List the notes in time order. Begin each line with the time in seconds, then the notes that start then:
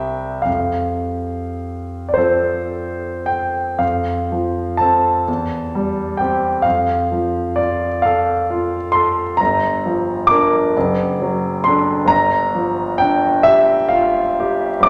Already playing: C2 G3 C4 G4 E5 G5
0.42 F2 F5
2.09 D5
2.14 F3 C4 C5
2.18 A4
3.26 G5
3.78 F2 F5
4.32 F3
4.77 C4 A4 A5
5.28 E2
5.75 G3
6.17 C4 G4 G5
6.62 F2 F5
7.12 F3
7.56 F4 D5
8.02 A4 F5
8.50 F4
8.92 A4 C6
9.37 G1 A#5
9.86 F3
10.27 D4 A#4 D6
10.77 F#1
11.22 F#3
11.64 D4 A4 C6
12.05 G1 A#5
12.55 F3
12.98 D4 G5
13.43 G4 E5
13.89 F4 F5
14.40 G4
14.80 G1 D6